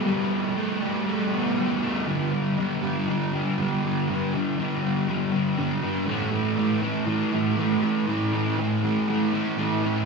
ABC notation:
X:1
M:4/4
L:1/8
Q:1/4=120
K:G
V:1 name="Distorted electric guitar" clef=bass
[G,A,B,]2 A, G, A, B, G, A, | [G,,D,G,] [D,G,] [G,,D,G,] [G,,D,G,] [G,,D,G,] [D,G,] [G,,D,G,] [D,G,] | [G,,D,G,] [D,G,] [G,,D,G,] [G,,D,G,] [G,,D,G,] [D,G,] [G,,D,G,] [D,G,] | [A,,E,A,] [E,A,] [A,,E,A,] [A,,E,A,] [A,,E,A,] [E,A,] [A,,E,A,] [E,A,] |
[A,,E,A,] [E,A,] [A,,E,A,] [A,,E,A,] [A,,E,A,] [E,A,] [A,,E,A,] [E,A,] |]